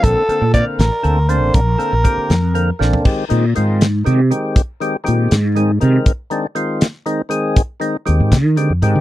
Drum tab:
CC |------------|------------|x-----------|------------|
HH |x-x-x-x-x-x-|x-x-x-x-x---|--x-x-x-x-x-|x-x-x-x-x-x-|
SD |------o-----|------o---o-|------o-----|------o-----|
FT |------------|-----------o|------------|------------|
BD |o---o-------|o---o-------|o-----------|o-----------|

CC |------------|------------|
HH |x-x-x-x-x-x-|x-x-x-x-x-x-|
SD |------o-----|------o-----|
FT |------------|------------|
BD |o-----------|o-----o-----|